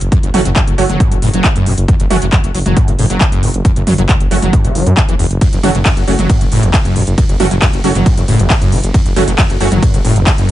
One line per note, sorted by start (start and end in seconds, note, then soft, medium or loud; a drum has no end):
0.00 0.08 F#1 medium
0.00 closed hi-hat medium
0.00 impact medium
0.12 0.18 F#2 medium
0.12 kick loud
0.12 closed hi-hat medium
0.23 0.30 F#1 medium
0.23 0.29 F#1 medium
0.23 closed hi-hat medium
0.34 0.41 F#1 loud
0.34 0.40 F#3 medium
0.34 0.40 A3 medium
0.34 0.40 C#4 medium
0.34 0.40 F#4 loud
0.34 mid tom medium
0.34 open hi-hat loud
0.45 0.52 F#1 loud
0.45 0.49 F#3 medium
0.45 closed hi-hat medium
0.56 0.62 F#2 medium
0.56 kick loud
0.56 clap loud
0.56 closed hi-hat medium
0.67 0.74 F#1 medium
0.67 closed hi-hat medium
0.78 0.85 F#1 loud
0.78 0.82 F#3 medium
0.78 0.84 A3 medium
0.78 0.84 C#4 medium
0.78 0.84 F#4 medium
0.78 open hi-hat loud
0.89 0.96 F#1 medium
0.89 1.02 F#3 medium
0.89 closed hi-hat medium
0.89 mid tom medium
1.00 1.13 F#2 medium
1.00 kick loud
1.00 closed hi-hat medium
1.11 1.18 F#1 medium
1.11 1.15 C#3 loud
1.11 closed hi-hat medium
1.22 1.29 F#1 loud
1.22 1.28 A2 loud
1.22 open hi-hat loud
1.34 1.40 F#1 medium
1.34 1.46 F#3 medium
1.34 closed hi-hat medium
1.44 1.48 A2 loud
1.44 kick loud
1.44 clap loud
1.44 closed hi-hat medium
1.56 1.62 F#1 medium
1.56 1.68 F#2 loud
1.56 closed hi-hat medium
1.66 1.74 F#1 loud
1.66 1.73 C#3 medium
1.66 open hi-hat loud
1.78 1.84 F#1 medium
1.78 closed hi-hat medium
1.88 1.95 F#2 medium
1.88 kick loud
1.88 closed hi-hat medium
2.00 2.07 F#1 medium
2.00 2.06 F#1 medium
2.00 closed hi-hat medium
2.10 2.18 F#1 loud
2.10 2.17 F#3 medium
2.10 2.17 A3 loud
2.10 2.17 C#4 medium
2.10 2.17 F#4 loud
2.10 mid tom medium
2.10 open hi-hat loud
2.22 2.29 F#1 medium
2.22 2.25 F#3 medium
2.22 closed hi-hat medium
2.33 2.39 F#2 medium
2.33 kick loud
2.33 clap loud
2.33 closed hi-hat medium
2.44 2.51 F#1 medium
2.44 closed hi-hat medium
2.55 2.62 F#1 loud
2.55 2.58 F#3 medium
2.55 open hi-hat loud
2.66 2.73 F#1 medium
2.66 2.78 F#3 medium
2.66 closed hi-hat medium
2.66 mid tom medium
2.77 2.89 F#2 medium
2.77 kick loud
2.77 closed hi-hat medium
2.88 2.95 F#1 medium
2.88 2.92 C#3 loud
2.88 closed hi-hat medium
2.99 3.06 F#1 loud
2.99 3.05 A2 loud
2.99 open hi-hat loud
3.10 3.17 F#1 medium
3.10 3.22 F#3 medium
3.10 closed hi-hat medium
3.21 3.25 A2 loud
3.21 kick loud
3.21 clap loud
3.21 closed hi-hat medium
3.32 3.39 F#1 medium
3.32 3.44 F#2 loud
3.32 closed hi-hat medium
3.43 3.50 F#1 loud
3.43 3.49 C#3 medium
3.43 open hi-hat loud
3.54 3.61 F#1 medium
3.54 closed hi-hat medium
3.65 3.71 F#2 medium
3.65 kick loud
3.65 closed hi-hat medium
3.76 3.83 F#1 medium
3.76 3.82 F#1 medium
3.76 closed hi-hat medium
3.87 3.94 F#1 loud
3.87 3.93 F#3 medium
3.87 mid tom loud
3.87 open hi-hat loud
3.98 4.05 F#1 loud
3.98 4.02 F#3 medium
3.98 closed hi-hat medium
4.09 4.15 F#2 medium
4.09 kick loud
4.09 clap loud
4.09 closed hi-hat medium
4.20 4.27 F#1 medium
4.20 closed hi-hat medium
4.31 4.38 F#1 loud
4.31 4.35 F#3 medium
4.31 4.37 A3 medium
4.31 4.37 C#4 medium
4.31 4.37 F#4 medium
4.31 open hi-hat loud
4.42 4.49 F#1 loud
4.42 4.55 F#3 medium
4.42 closed hi-hat soft
4.42 mid tom medium
4.53 4.66 F#2 medium
4.53 kick loud
4.53 closed hi-hat medium
4.64 4.71 F#1 medium
4.64 4.77 C#3 loud
4.64 closed hi-hat medium
4.75 4.82 F#1 loud
4.75 4.88 F#3 medium
4.75 open hi-hat loud
4.87 4.93 F#2 medium
4.87 4.90 F#2 medium
4.87 closed hi-hat medium
4.97 5.01 F#2 medium
4.97 kick loud
4.97 clap loud
4.97 closed hi-hat medium
5.09 5.15 F#1 medium
5.09 5.15 E3 medium
5.09 closed hi-hat medium
5.19 5.26 F#1 loud
5.19 5.26 E2 loud
5.19 open hi-hat loud
5.31 5.37 F#1 loud
5.31 closed hi-hat medium
5.41 5.48 F#2 medium
5.41 kick loud
5.41 closed hi-hat medium
5.41 ride medium
5.53 5.59 F#1 medium
5.53 closed hi-hat soft
5.63 5.71 F#1 loud
5.63 5.70 F#3 medium
5.63 5.70 A3 loud
5.63 5.70 C#4 medium
5.63 5.70 F#4 loud
5.63 mid tom loud
5.63 open hi-hat loud
5.75 5.82 F#1 loud
5.75 5.78 F#3 medium
5.75 closed hi-hat medium
5.85 5.92 F#2 medium
5.85 kick loud
5.85 clap loud
5.85 closed hi-hat medium
5.85 ride medium
5.97 6.04 F#1 medium
5.97 closed hi-hat soft
6.08 6.15 F#1 loud
6.08 6.11 F#3 medium
6.08 6.14 A3 medium
6.08 6.14 C#4 medium
6.08 6.14 F#4 medium
6.08 open hi-hat medium
6.19 6.26 F#1 medium
6.19 6.31 F#3 medium
6.19 closed hi-hat medium
6.19 mid tom medium
6.30 6.42 F#2 medium
6.30 kick loud
6.30 closed hi-hat medium
6.30 ride medium
6.41 6.48 F#1 medium
6.41 6.44 C#3 loud
6.41 closed hi-hat medium
6.52 6.59 F#1 loud
6.52 6.65 A2 loud
6.52 open hi-hat loud
6.63 6.70 F#1 loud
6.63 6.75 E2 loud
6.63 closed hi-hat medium
6.74 6.77 A2 loud
6.74 kick loud
6.74 clap loud
6.74 closed hi-hat medium
6.74 ride medium
6.85 6.92 F#1 medium
6.85 6.97 F#2 loud
6.85 closed hi-hat soft
6.96 7.03 F#1 loud
6.96 7.02 C#3 medium
6.96 open hi-hat loud
7.07 7.14 F#1 medium
7.07 closed hi-hat medium
7.18 7.24 F#2 medium
7.18 kick loud
7.18 closed hi-hat medium
7.18 ride medium
7.29 7.36 F#1 medium
7.29 7.35 F#1 medium
7.29 closed hi-hat soft
7.40 7.47 F#1 loud
7.40 7.46 F#3 medium
7.40 7.46 A3 medium
7.40 7.46 C#4 medium
7.40 7.46 F#4 loud
7.40 mid tom medium
7.40 open hi-hat loud
7.51 7.58 F#1 medium
7.51 7.55 F#3 medium
7.51 closed hi-hat medium
7.62 7.68 F#2 medium
7.62 kick loud
7.62 clap loud
7.62 closed hi-hat medium
7.62 ride medium
7.73 7.80 F#1 medium
7.73 closed hi-hat medium
7.84 7.91 F#1 loud
7.84 7.88 F#3 medium
7.84 7.90 A3 medium
7.84 7.90 C#4 medium
7.84 7.90 F#4 medium
7.84 open hi-hat loud
7.95 8.02 F#1 loud
7.95 8.08 F#3 medium
7.95 closed hi-hat medium
7.95 mid tom medium
8.06 8.19 F#2 medium
8.06 kick loud
8.06 closed hi-hat medium
8.06 ride medium
8.17 8.24 F#1 medium
8.17 8.21 C#3 loud
8.17 closed hi-hat medium
8.28 8.35 F#1 loud
8.28 8.41 A2 loud
8.28 open hi-hat loud
8.39 8.46 F#1 medium
8.39 8.52 E2 loud
8.39 closed hi-hat medium
8.50 8.54 A2 loud
8.50 kick loud
8.50 clap loud
8.50 closed hi-hat medium
8.50 ride medium
8.61 8.68 F#1 medium
8.61 8.74 F#2 loud
8.61 closed hi-hat medium
8.72 8.79 F#1 loud
8.72 8.79 C#3 medium
8.72 open hi-hat medium
8.84 8.90 F#1 medium
8.84 closed hi-hat medium
8.94 9.01 F#2 medium
8.94 kick loud
8.94 closed hi-hat medium
8.94 ride medium
9.06 9.12 F#1 medium
9.06 closed hi-hat medium
9.16 9.24 F#1 loud
9.16 9.23 F#3 medium
9.16 9.23 A3 loud
9.16 9.23 C#4 medium
9.16 9.23 F#4 loud
9.16 mid tom medium
9.16 open hi-hat loud
9.28 9.35 F#1 loud
9.28 9.31 F#3 medium
9.28 closed hi-hat medium
9.38 9.45 F#2 medium
9.38 kick loud
9.38 clap loud
9.38 closed hi-hat medium
9.38 ride medium
9.50 9.57 F#1 medium
9.50 closed hi-hat medium
9.60 9.68 F#1 loud
9.60 9.64 F#3 medium
9.60 9.67 A3 medium
9.60 9.67 C#4 medium
9.60 9.67 F#4 medium
9.60 open hi-hat medium
9.72 9.79 F#1 medium
9.72 9.84 F#3 medium
9.72 closed hi-hat medium
9.72 mid tom medium
9.83 9.95 F#2 medium
9.83 kick loud
9.83 closed hi-hat medium
9.83 ride medium
9.94 10.01 F#1 medium
9.94 9.97 C#3 loud
9.94 closed hi-hat medium
10.05 10.12 F#1 loud
10.05 10.18 A2 loud
10.05 open hi-hat loud
10.16 10.23 F#1 medium
10.16 10.28 E2 loud
10.16 closed hi-hat medium
10.27 10.30 A2 loud
10.27 kick loud
10.27 clap loud
10.27 closed hi-hat medium
10.27 ride medium
10.38 10.45 F#1 medium
10.38 10.50 F#2 loud
10.38 closed hi-hat medium